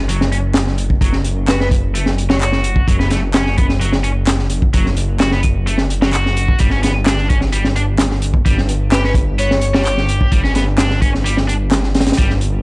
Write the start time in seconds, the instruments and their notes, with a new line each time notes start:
Already playing: detuned saw bass F#1
0.09 distorted electric guitar F#3, closed hi-hat
0.21 snare
0.32 distorted electric guitar C#4, closed hi-hat
0.54 snare, clap, closed hi-hat
0.67 snare
0.78 closed hi-hat
0.90 kick
1.01 detuned saw bass F#1, distorted electric guitar F#3, kick, closed hi-hat
1.13 snare
1.24 closed hi-hat
1.48 distorted electric guitar F#4, digital synth lead B4, snare, clap, closed hi-hat
1.60 distorted electric guitar B3, digital synth lead B4, snare
1.71 kick, closed hi-hat
1.94 distorted electric guitar A3, closed hi-hat
2.06 snare
2.18 closed hi-hat
2.29 distorted electric guitar F#3, digital synth lead C#5, snare
2.41 distorted electric guitar F#4, digital synth lead C#5, clap, closed hi-hat
2.52 snare
2.64 closed hi-hat
2.76 kick
2.88 detuned saw bass F#1, distorted electric guitar F#3, kick, closed hi-hat
2.99 distorted electric guitar B3, snare
3.10 distorted electric guitar A3, snare, closed hi-hat
3.34 distorted electric guitar C#4, snare, clap, closed hi-hat
3.46 snare
3.58 distorted electric guitar B3, kick, closed hi-hat
3.69 snare
3.81 distorted electric guitar F#3, closed hi-hat
3.92 snare
4.04 distorted electric guitar C#4, closed hi-hat
4.27 snare, clap, closed hi-hat
4.39 snare
4.50 closed hi-hat
4.62 kick
4.73 detuned saw bass F#1, distorted electric guitar F#3, kick, closed hi-hat
4.86 snare
4.97 closed hi-hat
5.20 distorted electric guitar F#4, snare, clap, closed hi-hat
5.31 distorted electric guitar B3, snare
5.43 kick, closed hi-hat
5.67 distorted electric guitar A3, closed hi-hat
5.78 snare
5.90 closed hi-hat
6.02 distorted electric guitar F#3, snare
6.13 distorted electric guitar F#4, clap, closed hi-hat
6.26 snare
6.37 closed hi-hat
6.48 kick
6.59 detuned saw bass G1, distorted electric guitar G3, kick, closed hi-hat
6.70 distorted electric guitar C#4, snare
6.83 distorted electric guitar B3, snare, closed hi-hat
7.06 distorted electric guitar D4, snare, clap, closed hi-hat
7.17 snare
7.29 distorted electric guitar C#4, kick, closed hi-hat
7.41 snare
7.53 distorted electric guitar G3, closed hi-hat
7.64 snare
7.76 distorted electric guitar D4, closed hi-hat
7.98 snare, clap, closed hi-hat
8.11 snare
8.22 closed hi-hat
8.34 kick
8.46 detuned saw bass G1, distorted electric guitar G3, kick, closed hi-hat
8.58 snare
8.69 closed hi-hat
8.92 distorted electric guitar G4, digital synth lead B4, snare, clap, closed hi-hat
9.04 distorted electric guitar C#4, digital synth lead B4, snare
9.14 kick, closed hi-hat
9.38 distorted electric guitar B3, digital synth lead C#5, closed hi-hat
9.51 snare
9.62 closed hi-hat
9.74 distorted electric guitar G3, snare
9.85 distorted electric guitar G4, clap, closed hi-hat
9.98 snare
10.09 closed hi-hat
10.21 kick
10.32 detuned saw bass G1, distorted electric guitar G3, kick, closed hi-hat
10.44 distorted electric guitar C#4, snare
10.55 distorted electric guitar B3, snare, closed hi-hat
10.78 distorted electric guitar D4, snare, clap, closed hi-hat
10.90 snare
11.01 distorted electric guitar C#4, kick, closed hi-hat
11.15 snare
11.25 distorted electric guitar G3, closed hi-hat
11.37 snare
11.48 distorted electric guitar D4, closed hi-hat
11.72 snare, clap, closed hi-hat
11.83 snare
11.95 snare, closed hi-hat
12.00 snare, closed hi-hat
12.06 snare, closed hi-hat
12.12 snare, closed hi-hat
12.18 detuned saw bass G1, distorted electric guitar G3, kick, closed hi-hat
12.30 snare
12.41 closed hi-hat